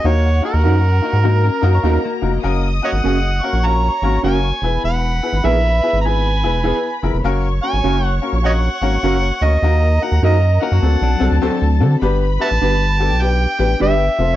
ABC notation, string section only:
X:1
M:4/4
L:1/8
Q:"Swing" 1/4=100
K:F#mix
V:1 name="String section"
[Ff]4 [Aa]4 | [dd']3 [cc']4 [Bb]- | [Bb]8 | [cc']8 |
[Aa]4 [=A=a]4 | [K:Gmix] [Bb]3 [Gg]4 [Ff] |]